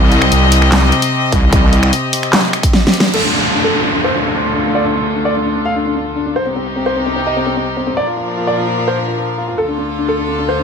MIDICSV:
0, 0, Header, 1, 6, 480
1, 0, Start_track
1, 0, Tempo, 402685
1, 1819, Time_signature, 4, 2, 24, 8
1, 12675, End_track
2, 0, Start_track
2, 0, Title_t, "Grand piano"
2, 0, Program_c, 0, 0
2, 3739, Note_on_c, 0, 69, 79
2, 3845, Note_off_c, 0, 69, 0
2, 3860, Note_on_c, 0, 62, 54
2, 3962, Note_off_c, 0, 62, 0
2, 3980, Note_on_c, 0, 62, 56
2, 4085, Note_off_c, 0, 62, 0
2, 4218, Note_on_c, 0, 62, 55
2, 4325, Note_off_c, 0, 62, 0
2, 4339, Note_on_c, 0, 69, 84
2, 4445, Note_off_c, 0, 69, 0
2, 4460, Note_on_c, 0, 62, 55
2, 4562, Note_off_c, 0, 62, 0
2, 4580, Note_on_c, 0, 62, 58
2, 4681, Note_off_c, 0, 62, 0
2, 4699, Note_on_c, 0, 62, 56
2, 4805, Note_off_c, 0, 62, 0
2, 4819, Note_on_c, 0, 72, 88
2, 4925, Note_off_c, 0, 72, 0
2, 4940, Note_on_c, 0, 62, 57
2, 5042, Note_off_c, 0, 62, 0
2, 5060, Note_on_c, 0, 62, 60
2, 5162, Note_off_c, 0, 62, 0
2, 5180, Note_on_c, 0, 62, 54
2, 5286, Note_off_c, 0, 62, 0
2, 5419, Note_on_c, 0, 62, 56
2, 5522, Note_off_c, 0, 62, 0
2, 5540, Note_on_c, 0, 62, 55
2, 5645, Note_off_c, 0, 62, 0
2, 5660, Note_on_c, 0, 74, 79
2, 5765, Note_off_c, 0, 74, 0
2, 5781, Note_on_c, 0, 62, 58
2, 5883, Note_off_c, 0, 62, 0
2, 5901, Note_on_c, 0, 62, 59
2, 6006, Note_off_c, 0, 62, 0
2, 6140, Note_on_c, 0, 62, 55
2, 6245, Note_off_c, 0, 62, 0
2, 6260, Note_on_c, 0, 74, 83
2, 6365, Note_off_c, 0, 74, 0
2, 6381, Note_on_c, 0, 62, 53
2, 6482, Note_off_c, 0, 62, 0
2, 6499, Note_on_c, 0, 62, 57
2, 6601, Note_off_c, 0, 62, 0
2, 6619, Note_on_c, 0, 62, 60
2, 6725, Note_off_c, 0, 62, 0
2, 6739, Note_on_c, 0, 77, 89
2, 6845, Note_off_c, 0, 77, 0
2, 6860, Note_on_c, 0, 62, 59
2, 6962, Note_off_c, 0, 62, 0
2, 6980, Note_on_c, 0, 62, 61
2, 7082, Note_off_c, 0, 62, 0
2, 7100, Note_on_c, 0, 62, 57
2, 7206, Note_off_c, 0, 62, 0
2, 7339, Note_on_c, 0, 62, 58
2, 7441, Note_off_c, 0, 62, 0
2, 7459, Note_on_c, 0, 62, 58
2, 7565, Note_off_c, 0, 62, 0
2, 7579, Note_on_c, 0, 72, 84
2, 7685, Note_off_c, 0, 72, 0
2, 7699, Note_on_c, 0, 60, 58
2, 7801, Note_off_c, 0, 60, 0
2, 7818, Note_on_c, 0, 60, 60
2, 7925, Note_off_c, 0, 60, 0
2, 8058, Note_on_c, 0, 60, 54
2, 8165, Note_off_c, 0, 60, 0
2, 8178, Note_on_c, 0, 72, 88
2, 8284, Note_off_c, 0, 72, 0
2, 8299, Note_on_c, 0, 60, 57
2, 8402, Note_off_c, 0, 60, 0
2, 8420, Note_on_c, 0, 60, 58
2, 8522, Note_off_c, 0, 60, 0
2, 8539, Note_on_c, 0, 60, 58
2, 8645, Note_off_c, 0, 60, 0
2, 8660, Note_on_c, 0, 75, 87
2, 8765, Note_off_c, 0, 75, 0
2, 8780, Note_on_c, 0, 60, 57
2, 8882, Note_off_c, 0, 60, 0
2, 8900, Note_on_c, 0, 60, 61
2, 9001, Note_off_c, 0, 60, 0
2, 9019, Note_on_c, 0, 60, 55
2, 9125, Note_off_c, 0, 60, 0
2, 9259, Note_on_c, 0, 60, 58
2, 9361, Note_off_c, 0, 60, 0
2, 9379, Note_on_c, 0, 60, 56
2, 9485, Note_off_c, 0, 60, 0
2, 9499, Note_on_c, 0, 74, 83
2, 9605, Note_off_c, 0, 74, 0
2, 9619, Note_on_c, 0, 65, 55
2, 9722, Note_off_c, 0, 65, 0
2, 9740, Note_on_c, 0, 65, 59
2, 9846, Note_off_c, 0, 65, 0
2, 9980, Note_on_c, 0, 65, 55
2, 10086, Note_off_c, 0, 65, 0
2, 10100, Note_on_c, 0, 74, 86
2, 10206, Note_off_c, 0, 74, 0
2, 10219, Note_on_c, 0, 65, 55
2, 10322, Note_off_c, 0, 65, 0
2, 10340, Note_on_c, 0, 65, 59
2, 10442, Note_off_c, 0, 65, 0
2, 10460, Note_on_c, 0, 65, 59
2, 10565, Note_off_c, 0, 65, 0
2, 10580, Note_on_c, 0, 72, 88
2, 10685, Note_off_c, 0, 72, 0
2, 10700, Note_on_c, 0, 65, 55
2, 10802, Note_off_c, 0, 65, 0
2, 10820, Note_on_c, 0, 65, 59
2, 10922, Note_off_c, 0, 65, 0
2, 10940, Note_on_c, 0, 65, 56
2, 11045, Note_off_c, 0, 65, 0
2, 11180, Note_on_c, 0, 65, 56
2, 11282, Note_off_c, 0, 65, 0
2, 11300, Note_on_c, 0, 65, 56
2, 11405, Note_off_c, 0, 65, 0
2, 11418, Note_on_c, 0, 69, 85
2, 11524, Note_off_c, 0, 69, 0
2, 11539, Note_on_c, 0, 62, 56
2, 11641, Note_off_c, 0, 62, 0
2, 11659, Note_on_c, 0, 62, 60
2, 11765, Note_off_c, 0, 62, 0
2, 11899, Note_on_c, 0, 62, 57
2, 12005, Note_off_c, 0, 62, 0
2, 12019, Note_on_c, 0, 69, 86
2, 12125, Note_off_c, 0, 69, 0
2, 12139, Note_on_c, 0, 62, 54
2, 12240, Note_off_c, 0, 62, 0
2, 12258, Note_on_c, 0, 62, 58
2, 12360, Note_off_c, 0, 62, 0
2, 12378, Note_on_c, 0, 62, 58
2, 12485, Note_off_c, 0, 62, 0
2, 12498, Note_on_c, 0, 72, 87
2, 12605, Note_off_c, 0, 72, 0
2, 12620, Note_on_c, 0, 62, 56
2, 12675, Note_off_c, 0, 62, 0
2, 12675, End_track
3, 0, Start_track
3, 0, Title_t, "String section"
3, 0, Program_c, 1, 48
3, 0, Note_on_c, 1, 48, 89
3, 0, Note_on_c, 1, 60, 78
3, 0, Note_on_c, 1, 67, 79
3, 0, Note_on_c, 1, 75, 95
3, 3691, Note_off_c, 1, 48, 0
3, 3691, Note_off_c, 1, 60, 0
3, 3691, Note_off_c, 1, 67, 0
3, 3691, Note_off_c, 1, 75, 0
3, 3738, Note_on_c, 1, 65, 69
3, 3739, Note_on_c, 1, 38, 76
3, 3739, Note_on_c, 1, 50, 66
3, 3739, Note_on_c, 1, 69, 80
3, 7540, Note_off_c, 1, 65, 0
3, 7541, Note_off_c, 1, 38, 0
3, 7541, Note_off_c, 1, 50, 0
3, 7541, Note_off_c, 1, 69, 0
3, 7579, Note_on_c, 1, 36, 76
3, 7579, Note_on_c, 1, 63, 73
3, 7579, Note_on_c, 1, 67, 86
3, 7580, Note_on_c, 1, 48, 70
3, 9480, Note_off_c, 1, 36, 0
3, 9480, Note_off_c, 1, 48, 0
3, 9480, Note_off_c, 1, 63, 0
3, 9480, Note_off_c, 1, 67, 0
3, 9500, Note_on_c, 1, 53, 69
3, 9500, Note_on_c, 1, 62, 71
3, 9500, Note_on_c, 1, 70, 87
3, 9501, Note_on_c, 1, 46, 75
3, 11400, Note_off_c, 1, 70, 0
3, 11401, Note_off_c, 1, 46, 0
3, 11401, Note_off_c, 1, 53, 0
3, 11401, Note_off_c, 1, 62, 0
3, 11420, Note_on_c, 1, 38, 75
3, 11420, Note_on_c, 1, 50, 69
3, 11420, Note_on_c, 1, 65, 69
3, 11420, Note_on_c, 1, 69, 82
3, 12675, Note_off_c, 1, 38, 0
3, 12675, Note_off_c, 1, 50, 0
3, 12675, Note_off_c, 1, 65, 0
3, 12675, Note_off_c, 1, 69, 0
3, 12675, End_track
4, 0, Start_track
4, 0, Title_t, "Wobble bass"
4, 0, Program_c, 2, 39
4, 0, Note_on_c, 2, 36, 103
4, 360, Note_off_c, 2, 36, 0
4, 378, Note_on_c, 2, 36, 103
4, 1080, Note_off_c, 2, 36, 0
4, 1578, Note_on_c, 2, 36, 100
4, 1800, Note_off_c, 2, 36, 0
4, 1819, Note_on_c, 2, 36, 103
4, 2280, Note_off_c, 2, 36, 0
4, 12675, End_track
5, 0, Start_track
5, 0, Title_t, "Downlifter"
5, 0, Program_c, 3, 103
5, 3739, Note_on_c, 3, 60, 65
5, 7579, Note_off_c, 3, 60, 0
5, 12675, End_track
6, 0, Start_track
6, 0, Title_t, "Drums"
6, 139, Note_on_c, 9, 42, 55
6, 258, Note_off_c, 9, 42, 0
6, 258, Note_on_c, 9, 26, 76
6, 378, Note_off_c, 9, 26, 0
6, 378, Note_on_c, 9, 42, 82
6, 498, Note_off_c, 9, 42, 0
6, 619, Note_on_c, 9, 46, 102
6, 738, Note_off_c, 9, 46, 0
6, 739, Note_on_c, 9, 26, 54
6, 858, Note_off_c, 9, 26, 0
6, 858, Note_on_c, 9, 38, 112
6, 858, Note_on_c, 9, 39, 88
6, 858, Note_on_c, 9, 42, 84
6, 978, Note_off_c, 9, 38, 0
6, 978, Note_off_c, 9, 39, 0
6, 978, Note_off_c, 9, 42, 0
6, 1099, Note_on_c, 9, 42, 59
6, 1218, Note_off_c, 9, 42, 0
6, 1219, Note_on_c, 9, 42, 81
6, 1338, Note_off_c, 9, 42, 0
6, 1579, Note_on_c, 9, 36, 60
6, 1579, Note_on_c, 9, 42, 66
6, 1698, Note_off_c, 9, 36, 0
6, 1698, Note_off_c, 9, 42, 0
6, 1819, Note_on_c, 9, 36, 120
6, 1819, Note_on_c, 9, 42, 86
6, 1938, Note_off_c, 9, 36, 0
6, 1938, Note_off_c, 9, 42, 0
6, 2059, Note_on_c, 9, 42, 57
6, 2178, Note_off_c, 9, 42, 0
6, 2179, Note_on_c, 9, 26, 74
6, 2298, Note_off_c, 9, 26, 0
6, 2299, Note_on_c, 9, 42, 83
6, 2418, Note_off_c, 9, 42, 0
6, 2539, Note_on_c, 9, 46, 103
6, 2658, Note_off_c, 9, 46, 0
6, 2659, Note_on_c, 9, 26, 54
6, 2659, Note_on_c, 9, 42, 39
6, 2779, Note_off_c, 9, 26, 0
6, 2779, Note_off_c, 9, 42, 0
6, 2779, Note_on_c, 9, 38, 113
6, 2779, Note_on_c, 9, 39, 86
6, 2779, Note_on_c, 9, 42, 83
6, 2898, Note_off_c, 9, 38, 0
6, 2898, Note_off_c, 9, 39, 0
6, 2898, Note_off_c, 9, 42, 0
6, 3019, Note_on_c, 9, 26, 64
6, 3019, Note_on_c, 9, 42, 60
6, 3138, Note_off_c, 9, 26, 0
6, 3138, Note_off_c, 9, 42, 0
6, 3139, Note_on_c, 9, 36, 58
6, 3139, Note_on_c, 9, 42, 84
6, 3258, Note_off_c, 9, 36, 0
6, 3258, Note_off_c, 9, 42, 0
6, 3259, Note_on_c, 9, 38, 72
6, 3378, Note_off_c, 9, 38, 0
6, 3419, Note_on_c, 9, 38, 80
6, 3499, Note_on_c, 9, 42, 66
6, 3538, Note_off_c, 9, 38, 0
6, 3579, Note_on_c, 9, 38, 98
6, 3618, Note_off_c, 9, 42, 0
6, 3698, Note_off_c, 9, 38, 0
6, 3739, Note_on_c, 9, 49, 71
6, 3858, Note_off_c, 9, 49, 0
6, 12675, End_track
0, 0, End_of_file